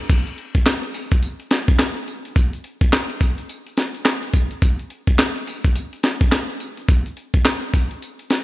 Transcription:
0.09 kick, closed hi-hat, crash, tambourine, shaker
0.27 closed hi-hat, shaker
0.38 closed hi-hat, shaker
0.55 kick, closed hi-hat, shaker
0.66 snare, clap, closed hi-hat, tambourine, shaker
0.83 closed hi-hat, shaker
0.94 open hi-hat, tambourine, shaker
1.11 kick, closed hi-hat, shaker
1.23 closed hi-hat, tambourine, shaker
1.40 closed hi-hat, shaker
1.51 snare, closed hi-hat, tambourine
1.68 kick, closed hi-hat, shaker
1.79 snare, clap, closed hi-hat, tambourine, shaker
1.97 closed hi-hat, shaker
2.08 closed hi-hat, tambourine
2.25 closed hi-hat, shaker
2.36 kick, closed hi-hat, tambourine, shaker
2.53 closed hi-hat, shaker
2.64 closed hi-hat, shaker
2.81 kick, closed hi-hat, shaker
2.93 snare, clap, closed hi-hat, tambourine, shaker
3.10 closed hi-hat, shaker
3.21 kick, open hi-hat, tambourine, shaker
3.38 closed hi-hat, shaker
3.49 closed hi-hat, tambourine, shaker
3.67 closed hi-hat, shaker
3.77 snare, closed hi-hat, tambourine
3.95 closed hi-hat, shaker
4.05 snare, clap, closed hi-hat, tambourine, shaker
4.23 closed hi-hat, shaker
4.33 kick, closed hi-hat, tambourine
4.51 closed hi-hat, shaker
4.62 kick, closed hi-hat, tambourine, shaker
4.79 closed hi-hat, shaker
4.90 closed hi-hat, shaker
5.07 kick, closed hi-hat, shaker
5.19 snare, clap, closed hi-hat, tambourine, shaker
5.36 closed hi-hat, shaker
5.47 open hi-hat, tambourine, shaker
5.64 kick, closed hi-hat, shaker
5.75 closed hi-hat, tambourine, shaker
5.93 closed hi-hat, shaker
6.03 snare, closed hi-hat, tambourine
6.21 kick, closed hi-hat, shaker
6.32 snare, clap, closed hi-hat, tambourine, shaker
6.50 closed hi-hat, shaker
6.60 closed hi-hat, tambourine
6.77 closed hi-hat, shaker
6.88 kick, closed hi-hat, tambourine, shaker
7.06 closed hi-hat, shaker
7.17 closed hi-hat, shaker
7.34 kick, closed hi-hat, shaker
7.45 snare, clap, closed hi-hat, tambourine, shaker
7.62 closed hi-hat, shaker
7.74 kick, open hi-hat, tambourine, shaker
7.91 closed hi-hat, shaker
8.02 closed hi-hat, tambourine, shaker
8.19 closed hi-hat, shaker
8.30 snare, closed hi-hat, tambourine

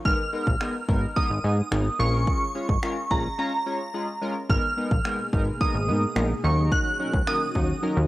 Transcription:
0.05 G#1 G#3 B3 D#4 A#4 F6, kick
0.33 G#3 B3 D#4 A#4
0.47 A#1, kick
0.60 G#3 B3 D#4 A#4, finger snap
0.88 G#1 G#3 B3 D#4 A#4, kick
1.16 G#3 B3 D#4 A#4 D#6, kick
1.30 G#1
1.44 G#2 G#3 B3 D#4 G#4
1.71 G#1 G#3 B3 D#4 A#4, finger snap
1.99 A#1 G#3 C#4 F4 A#4 C#6
2.27 kick
2.55 G#3 C#4 F4 C#5
2.69 G#1, kick
2.83 G#3 C#4 F4 A#4, finger snap
3.10 A#1 G#3 C#4 F4 G#4 A#5, kick
3.38 G#3 C#4 F4 C#5 A#5
3.66 G#3 C#4 F4 C#5
3.94 G#3 C#4 F4 G#4
4.21 G#3 C#4 F4 A#4
4.49 G#1 B2 G#3 A#3 B3 D#4 G#4 A#4 F6, kick
4.77 G#3 B3 D#4 A#4
4.91 A#1, kick
5.05 G#3 B3 D#4 A#4, finger snap
5.33 G#1 G#3 B3 D#4 A#4, kick
5.60 G#3 B3 D#4 A#4 D#6, kick
5.74 G#1
5.88 G#2 G#3 B3 D#4 A#4
6.16 A#1 G#3 B3 D#4 A#4, finger snap
6.44 D#2 D#3 F#3 C#4 D#4 F#4 A#4 C#6
6.72 F#6, kick
6.99 F#3 C#4 D#4 A#4
7.13 C#2, kick
7.27 F#3 C#4 D#4 A#4 D#6, finger snap
7.55 D#2 F#3 C#4 D#4 F#4, kick
7.82 F#3 C#4 D#4 A#4
7.97 D#2

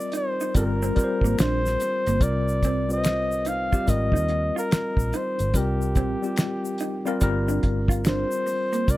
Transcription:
Already playing: G3 C4 F4 A#4 D5
0.00 shaker
0.12 D#4, closed hi-hat, shaker
0.16 C5
0.41 D#4, shaker
0.55 G1 G3 C4 F4 A#4, kick, closed hi-hat, shaker
0.83 C4, shaker
0.95 G3 C4 F4 A#4, muted fingered electric bass stroke, muted clean electric guitar stroke, kick, closed hi-hat, shaker
1.04 C5
1.21 G#1 A#3, kick, shaker
1.39 A#1 D4 C5, finger snap, snare, closed hi-hat, shaker
1.66 snare, shaker
1.80 muted clean electric guitar stroke, closed hi-hat, shaker
2.06 G1 A#3, closed hi-hat, shaker
2.20 C2 G3 C4 F4 A#4 D5, kick, closed hi-hat, shaker
2.48 shaker
2.63 C4, kick, closed hi-hat, shaker
2.89 G3 C4 F4 B4 D#5, shaker
2.97 C5
3.04 finger snap, muted clean electric guitar stroke, snare, closed hi-hat, shaker
3.32 shaker
3.45 D#4 F5, closed hi-hat, shaker
3.72 G3 C4 F4 G4, kick, shaker
3.86 G#1 G3 C4 F4 A#4 D#5, kick, closed hi-hat, shaker
4.12 D#2 D#4, kick
4.16 shaker
4.29 muted clean electric guitar stroke, closed hi-hat
4.56 F4 A#4, shaker
4.71 finger snap, muted fingered electric bass stroke, snare, closed hi-hat, shaker
4.97 A#1, kick, shaker
5.13 D#4 C5, closed hi-hat, shaker
5.39 G1, closed hi-hat, shaker
5.54 C2 G3 C4 F4 G4 A#4, kick, closed hi-hat, shaker
5.82 shaker
5.95 C4, kick, closed hi-hat, shaker
6.22 G3 C4 F4 G4, shaker
6.36 finger snap, muted clean electric guitar stroke, snare, closed hi-hat, shaker
6.65 shaker
6.78 D#4, closed hi-hat, shaker
7.05 G3 C4 F4 A#4, shaker
7.21 G1 G3 C4 F4 A#4, kick, closed hi-hat, shaker
7.48 D4, shaker
7.63 G1, muted clean electric guitar stroke, kick, closed hi-hat
7.88 F4, kick, closed hi-hat, shaker
8.05 D4 C5, finger snap, snare, closed hi-hat, shaker
8.31 shaker
8.46 muted clean electric guitar stroke, open hi-hat, shaker
8.73 A#3, closed hi-hat, shaker
8.88 C2 G3 C4 F4 A#4 D5, kick, closed hi-hat, shaker

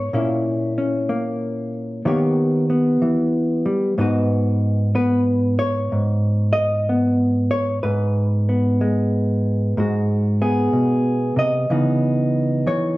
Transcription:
Already playing: G#2 A#4 C#5
0.13 A#2 A#3 C#4 E4
0.78 C#4
1.09 A#3
2.05 D#3 A#3 B3 G4 C#5
2.70 B3
3.02 E3
3.66 G3
3.98 G#2 B3 D#4 F#4 B4
4.95 B3 B4
5.59 C#5
5.92 G#2
6.53 D#5
6.89 B3
7.51 C#5
7.83 G#2 B4
8.49 B3
8.81 G#3
9.77 G#2 G#3 F#4
10.42 B3 G#4
10.73 B2
11.36 C3 D#5
11.70 C#3 E3 B3 D#4
12.67 E3 C#5

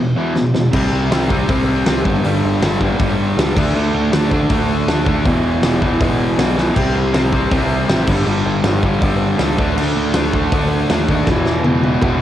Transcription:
0.00 E2 B2
0.17 E2 B2 E3
0.36 E2 B2, snare
0.55 E2 B2, snare
0.73 C2 C3 G3 C4, kick, crash
0.92 C2
1.11 C2 C3 G3 C4, snare, open hi-hat
1.29 C3 G3 C4, kick
1.48 C2 C3 G3 C4, kick, open hi-hat
1.86 C2 C3 G3 C4, snare, open hi-hat
2.05 G1 G2 D3 G3, kick
2.24 G1 G2 D3 G3, open hi-hat
2.44 G1
2.62 G1 G2 D3 G3, snare, open hi-hat
2.81 G2 D3 G3, kick
3.00 G1 G2 D3 G3, kick, open hi-hat
3.36 C#2 G2 D3 G3, snare, open hi-hat
3.56 D2 D3 A3 D4, kick, crash
3.74 D2 D3 A3 D4
3.94 D2
4.11 D2 D3 A3 D4, snare, open hi-hat
4.31 D3 A3 D4, kick
4.49 D2 D3 A3 D4, kick, open hi-hat
4.87 D2 D3 A3 D4, snare, open hi-hat
5.06 D3 A3 D4, kick
5.25 E1 E2 B2 E3, kick, open hi-hat
5.43 E1
5.62 E1 E2 B2 E3, snare, open hi-hat
5.81 E2 B2 E3, kick
6.01 E1 E2 B2 E3, kick, open hi-hat
6.37 B1 E2 B2 E3, snare, open hi-hat
6.58 E2 B2 E3, snare
6.76 C2 C3 G3 C4, kick, crash
6.95 C2
7.13 C2 C3 G3 C4, snare, open hi-hat
7.33 C3 G3 C4, kick
7.51 C2 C3 G3 C4, kick, open hi-hat
7.89 A1 C3 G3 C4, snare, open hi-hat
8.07 G1 G2 D3 G3, kick, crash
8.27 G1 G2 D3 G3
8.45 G1
8.63 G1 G2 D3 G3, snare, open hi-hat
8.83 G2 D3 G3, kick
9.02 G1 G2 D3 G3, kick, open hi-hat
9.39 C#2 G2 D3 G3, snare, open hi-hat
9.58 D2 D3 A3 D4, kick
9.76 D2 D3 A3 D4, crash
9.96 D2
10.14 D2 D3 A3 D4, snare, open hi-hat
10.33 D3 A3 D4, kick
10.52 D2 D3 A3 D4, kick, open hi-hat
10.89 D#2 D3 A3 D4, snare, open hi-hat
11.09 D3 A3 D4, kick
11.26 E1 E2 B2, kick, snare
11.31 E3
11.45 E1, snare
11.64 E1 E2 B2 E3, high tom
11.83 E2 B2 E3, high tom
12.01 E1 E2 B2 E3, kick, mid tom

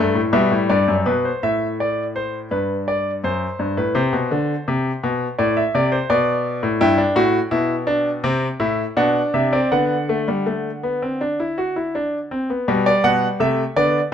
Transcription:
Already playing: G2 A3 G5
0.15 A2
0.33 B2 G3 E5
0.51 A2
0.69 G2 D5
0.88 F#2
1.06 B2 B4
1.25 C5
1.43 A2 E5
1.80 D5
2.16 C5
2.51 G2 B4
2.88 D5
3.24 F#2 C5
3.59 G2
3.77 A2 B4
3.95 C3 C5
4.13 B2
4.31 D3
4.68 C3
5.03 B2
5.39 A2 D5
5.57 E5
5.75 C3 D5
5.92 C5
6.10 B2 D5
6.63 A2
6.81 G2 E4 G5
6.98 D4
7.16 A2 F#4
7.51 B2 E4
7.87 D4
8.24 C3 C4
8.60 A2 E4
8.97 B2 D4 F#5
9.34 C3 E5
9.53 C4 D5
9.72 D3 B3 F#5
10.09 A3
10.28 G3
10.46 A3
10.83 B3
11.02 C4
11.21 D4
11.40 E4
11.58 F#4
11.76 E4
11.95 D4
12.31 C4
12.50 B3
12.68 B2 G3
12.86 D5
13.04 B2 F#5
13.40 C3 A3 E5
13.76 D3 B3 D5

